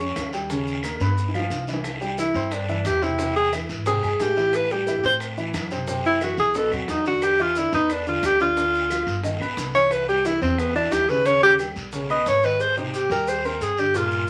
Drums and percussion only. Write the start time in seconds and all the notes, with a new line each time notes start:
0.16 high bongo, low bongo, short guiro, claves, maracas
0.33 short guiro, maracas
0.50 high bongo, long guiro, maracas
0.67 maracas
0.83 high bongo, short guiro, claves, maracas
0.95 high bongo
1.00 short guiro, maracas
1.06 high bongo
1.17 long guiro, maracas
1.29 low bongo
1.34 claves, maracas
1.40 low bongo
1.50 low bongo, short guiro, maracas
1.67 short guiro, maracas
1.74 low bongo
1.84 high bongo, long guiro, claves, maracas
2.01 maracas
2.18 high bongo, short guiro, maracas
2.34 short guiro, maracas
2.51 high bongo, long guiro, claves, maracas
2.69 maracas
2.85 high bongo, low bongo, short guiro, claves, maracas
3.02 short guiro, maracas
3.19 high bongo, long guiro, maracas
3.36 maracas
3.53 high bongo, short guiro, claves, maracas
3.69 high bongo, short guiro, maracas
3.86 high bongo, long guiro, maracas
4.03 high bongo, claves, maracas
4.19 high bongo, low bongo, short guiro, maracas
4.36 high bongo, short guiro, maracas
4.53 high bongo, long guiro, claves, maracas
4.70 maracas
4.87 high bongo, short guiro, maracas
5.04 short guiro, maracas
5.20 high bongo, long guiro, claves, maracas
5.37 maracas
5.54 high bongo, low bongo, short guiro, claves, maracas
5.71 short guiro, maracas
5.88 high bongo, long guiro, maracas
6.05 maracas
6.21 high bongo, short guiro, claves, maracas
6.38 high bongo, short guiro, maracas
6.55 high bongo, long guiro, maracas
6.72 high bongo, claves, maracas
6.88 high bongo, low bongo, short guiro, maracas
7.05 high bongo, short guiro, maracas
7.22 high bongo, long guiro, claves, maracas
7.39 maracas
7.55 high bongo, short guiro, maracas
7.72 short guiro, maracas
7.89 high bongo, long guiro, claves, maracas
8.06 maracas
8.23 high bongo, low bongo, short guiro, claves, maracas
8.39 short guiro, maracas
8.57 high bongo, long guiro, maracas
8.74 maracas
8.90 high bongo, short guiro, claves, maracas
9.07 high bongo, short guiro, maracas
9.23 high bongo, long guiro, maracas
9.41 high bongo, claves, maracas
9.57 high bongo, low bongo, short guiro, maracas
9.74 high bongo, short guiro, maracas
9.91 high bongo, long guiro, claves, maracas
10.08 maracas
10.25 high bongo, short guiro, maracas
10.42 short guiro, maracas
10.58 high bongo, long guiro, claves, maracas
10.75 maracas
10.92 high bongo, low bongo, short guiro, claves, maracas
11.09 short guiro, maracas
11.25 high bongo, long guiro, maracas
11.42 maracas
11.59 high bongo, short guiro, claves, maracas
11.76 high bongo, short guiro, maracas
11.92 high bongo, long guiro, maracas
12.10 high bongo, claves, maracas
12.26 high bongo, low bongo, short guiro, maracas
12.43 high bongo, short guiro, maracas
12.60 cowbell, long guiro, maracas
12.77 maracas
12.94 cowbell, short guiro, maracas
13.11 short guiro, maracas
13.27 cowbell, long guiro, maracas
13.45 maracas
13.61 cowbell, short guiro, maracas
13.78 short guiro, maracas
13.94 cowbell, long guiro, maracas
14.11 maracas